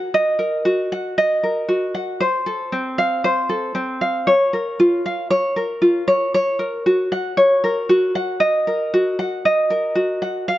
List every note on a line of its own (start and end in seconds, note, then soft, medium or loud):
0.00 0.38 F#4 medium
0.00 0.39 A#4 medium
0.00 0.14 C#5 medium
0.00 0.92 F#5 medium
0.14 1.17 D#5 loud
0.39 0.65 A#4 medium
0.65 1.67 F#4 medium
0.92 1.93 F#5 medium
1.18 2.20 D#5 medium
1.43 2.27 A#4 medium
1.69 2.26 F#4 medium
1.95 2.26 F#5 medium
2.20 3.23 C5 medium
2.46 3.48 A4 medium
2.72 3.74 C4 medium
2.98 4.01 F5 medium
3.24 4.27 C5 medium
3.49 4.33 A4 medium
3.75 4.33 C4 medium
4.01 4.33 F5 medium
4.27 5.30 C#5 medium
4.53 5.56 A#4 medium
4.80 5.80 F4 medium
5.06 5.30 F5 medium
5.30 6.07 C#5 medium
5.56 6.59 A#4 medium
5.82 6.14 F4 medium
6.08 6.33 C#5 medium
6.34 7.11 C#5 medium
6.59 6.86 A#4 medium
6.86 7.89 F#4 medium
7.12 8.15 F#5 medium
7.37 8.40 C#5 medium
7.64 8.67 A#4 medium
7.89 8.93 F#4 medium
8.15 9.19 F#5 medium
8.40 9.44 D#5 medium
8.67 9.69 A#4 medium
8.94 9.94 F#4 medium
9.19 10.21 F#5 medium
9.45 10.49 D#5 medium
9.70 10.54 A#4 medium
9.95 10.54 F#4 medium
10.22 10.48 F#5 medium
10.48 10.58 F5 medium